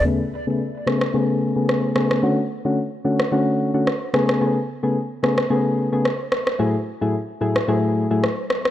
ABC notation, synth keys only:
X:1
M:4/4
L:1/16
Q:"Swing 16ths" 1/4=110
K:A
V:1 name="Synth keys"
[C,A,B,G] z2 [C,A,B,G] z2 [C,A,B,G] z [C,A,B,G]3 [C,A,B,G]3 [C,A,B,G]2 | [D,A,CF] z2 [D,A,CF] z2 [D,A,CF] z [D,A,CF]3 [D,A,CF] z2 [C,A,B,G]2 | [C,A,B,G] z2 [C,A,B,G] z2 [C,A,B,G] z [C,A,B,G]3 [C,A,B,G] z4 | [A,,F,A,EG] z2 [A,,F,A,EG] z2 [A,,F,A,EG] z [A,,F,A,EG]3 [A,,F,A,EG] z4 |]